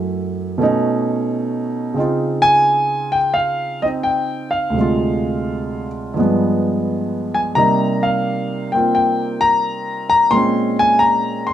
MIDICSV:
0, 0, Header, 1, 2, 480
1, 0, Start_track
1, 0, Tempo, 689655
1, 1375, Time_signature, 4, 2, 24, 8
1, 3300, Tempo, 702576
1, 6180, Tempo, 685714
1, 7985, End_track
2, 0, Start_track
2, 0, Title_t, "Grand piano"
2, 0, Program_c, 0, 0
2, 0, Note_on_c, 0, 42, 40
2, 0, Note_on_c, 0, 54, 44
2, 0, Note_on_c, 0, 57, 36
2, 0, Note_on_c, 0, 64, 44
2, 401, Note_off_c, 0, 57, 0
2, 404, Note_on_c, 0, 47, 58
2, 412, Note_on_c, 0, 57, 51
2, 422, Note_off_c, 0, 42, 0
2, 425, Note_off_c, 0, 54, 0
2, 426, Note_on_c, 0, 61, 49
2, 428, Note_off_c, 0, 64, 0
2, 438, Note_on_c, 0, 63, 69
2, 1352, Note_on_c, 0, 49, 45
2, 1365, Note_on_c, 0, 60, 48
2, 1367, Note_off_c, 0, 47, 0
2, 1368, Note_off_c, 0, 63, 0
2, 1371, Note_off_c, 0, 57, 0
2, 1378, Note_off_c, 0, 61, 0
2, 1378, Note_on_c, 0, 63, 47
2, 1389, Note_on_c, 0, 65, 53
2, 1684, Note_on_c, 0, 80, 106
2, 2171, Note_on_c, 0, 79, 81
2, 2193, Note_off_c, 0, 80, 0
2, 2322, Note_on_c, 0, 77, 76
2, 2334, Note_off_c, 0, 79, 0
2, 2637, Note_off_c, 0, 77, 0
2, 2653, Note_off_c, 0, 60, 0
2, 2660, Note_on_c, 0, 75, 73
2, 2663, Note_on_c, 0, 60, 43
2, 2673, Note_off_c, 0, 63, 0
2, 2684, Note_on_c, 0, 63, 50
2, 2695, Note_off_c, 0, 75, 0
2, 2808, Note_on_c, 0, 79, 82
2, 3121, Note_off_c, 0, 79, 0
2, 3137, Note_on_c, 0, 77, 71
2, 3270, Note_on_c, 0, 38, 49
2, 3289, Note_off_c, 0, 49, 0
2, 3296, Note_on_c, 0, 48, 42
2, 3298, Note_off_c, 0, 60, 0
2, 3308, Note_off_c, 0, 63, 0
2, 3308, Note_off_c, 0, 65, 0
2, 3323, Note_on_c, 0, 56, 44
2, 3346, Note_on_c, 0, 65, 55
2, 4075, Note_off_c, 0, 77, 0
2, 4243, Note_off_c, 0, 38, 0
2, 4254, Note_on_c, 0, 43, 52
2, 4256, Note_off_c, 0, 48, 0
2, 4266, Note_on_c, 0, 53, 43
2, 4268, Note_off_c, 0, 56, 0
2, 4278, Note_on_c, 0, 56, 48
2, 4280, Note_off_c, 0, 65, 0
2, 4292, Note_on_c, 0, 59, 53
2, 5079, Note_on_c, 0, 80, 76
2, 5113, Note_off_c, 0, 80, 0
2, 5219, Note_off_c, 0, 43, 0
2, 5221, Note_on_c, 0, 82, 86
2, 5225, Note_off_c, 0, 53, 0
2, 5227, Note_on_c, 0, 48, 57
2, 5229, Note_on_c, 0, 55, 44
2, 5231, Note_off_c, 0, 56, 0
2, 5236, Note_on_c, 0, 58, 45
2, 5238, Note_off_c, 0, 59, 0
2, 5239, Note_on_c, 0, 63, 54
2, 5529, Note_off_c, 0, 82, 0
2, 5546, Note_on_c, 0, 77, 73
2, 6001, Note_off_c, 0, 77, 0
2, 6018, Note_on_c, 0, 79, 71
2, 6020, Note_off_c, 0, 58, 0
2, 6030, Note_on_c, 0, 58, 47
2, 6037, Note_on_c, 0, 60, 44
2, 6050, Note_on_c, 0, 65, 51
2, 6163, Note_off_c, 0, 79, 0
2, 6173, Note_on_c, 0, 79, 77
2, 6495, Note_on_c, 0, 82, 90
2, 6520, Note_off_c, 0, 79, 0
2, 6966, Note_off_c, 0, 82, 0
2, 6977, Note_on_c, 0, 82, 90
2, 7125, Note_on_c, 0, 46, 49
2, 7125, Note_on_c, 0, 84, 95
2, 7135, Note_on_c, 0, 56, 40
2, 7138, Note_off_c, 0, 60, 0
2, 7138, Note_off_c, 0, 82, 0
2, 7141, Note_off_c, 0, 58, 0
2, 7144, Note_off_c, 0, 48, 0
2, 7146, Note_off_c, 0, 55, 0
2, 7149, Note_on_c, 0, 60, 44
2, 7150, Note_off_c, 0, 63, 0
2, 7151, Note_off_c, 0, 65, 0
2, 7159, Note_on_c, 0, 61, 49
2, 7441, Note_off_c, 0, 84, 0
2, 7466, Note_on_c, 0, 80, 93
2, 7604, Note_on_c, 0, 82, 89
2, 7622, Note_off_c, 0, 80, 0
2, 7919, Note_off_c, 0, 82, 0
2, 7937, Note_on_c, 0, 84, 78
2, 7985, Note_off_c, 0, 46, 0
2, 7985, Note_off_c, 0, 56, 0
2, 7985, Note_off_c, 0, 60, 0
2, 7985, Note_off_c, 0, 61, 0
2, 7985, Note_off_c, 0, 84, 0
2, 7985, End_track
0, 0, End_of_file